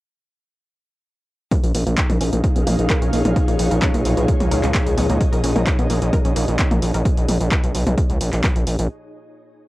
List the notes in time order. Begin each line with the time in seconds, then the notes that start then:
1.51 A#2 F3 A#3 D#4, kick, closed hi-hat, mid tom
1.64 A#1, closed hi-hat
1.75 A#1 B3, open hi-hat
1.84 A#1 A#3 G#4, closed hi-hat
1.98 kick, clap, closed hi-hat
2.07 A#1 A#4 F5, closed hi-hat, mid tom
2.21 A#1 C#4, open hi-hat
2.33 A#1 A#3, closed hi-hat
2.41 C#5, kick, closed hi-hat
2.56 A#1 B3, closed hi-hat
2.67 A#1 A#3, open hi-hat, mid tom
2.79 A#1, closed hi-hat
2.90 A#4, kick, clap, closed hi-hat
3.02 A#1 C#4, closed hi-hat
3.13 A#1 A#3, open hi-hat
3.25 A#1, closed hi-hat, mid tom
3.36 B3, kick, closed hi-hat
3.48 A#1 A#3, closed hi-hat
3.59 A#1, open hi-hat
3.71 A#1 A#4, closed hi-hat
3.82 C#4, kick, clap, closed hi-hat, mid tom
3.94 B1 A#3, closed hi-hat
4.05 B1, open hi-hat
4.17 B1 B3, closed hi-hat
4.28 A#3, kick, closed hi-hat
4.40 C#2, closed hi-hat, mid tom
4.51 C#2 A#4, open hi-hat
4.63 C#2 C#4 D#5, clap, closed hi-hat
4.75 A#3, kick, clap, closed hi-hat
4.86 C#2, closed hi-hat
4.98 C#2 B3, open hi-hat, mid tom
5.10 C#2 A#3, closed hi-hat
5.21 kick, closed hi-hat
5.33 A#1 A#4, closed hi-hat
5.44 A#1 C#4, open hi-hat
5.56 A#1 A#3, closed hi-hat, mid tom
5.67 kick, clap, closed hi-hat
5.79 A#1 B3, closed hi-hat
5.90 A#1 A#3, open hi-hat
6.02 A#1, closed hi-hat
6.13 A#4, kick, closed hi-hat, mid tom
6.25 A#1 C#4, closed hi-hat
6.36 A#1 A#3, open hi-hat
6.48 A#1, closed hi-hat
6.59 B3, kick, clap, closed hi-hat
6.71 A#1 A#3, closed hi-hat, mid tom
6.82 A#1, open hi-hat
6.94 A#1 A#4, closed hi-hat
7.05 kick, closed hi-hat
7.17 A#1, closed hi-hat
7.28 A#1, open hi-hat, mid tom
7.41 A#1, closed hi-hat
7.51 kick, clap, closed hi-hat
7.64 B1, closed hi-hat
7.75 B1, open hi-hat
7.87 B1, closed hi-hat, mid tom
7.98 kick, closed hi-hat
8.10 C#2, closed hi-hat
8.21 A#1, open hi-hat
8.33 A#1, clap, closed hi-hat
8.44 kick, clap, closed hi-hat, mid tom
8.56 A#1, closed hi-hat
8.67 A#1, open hi-hat
8.79 A#1, closed hi-hat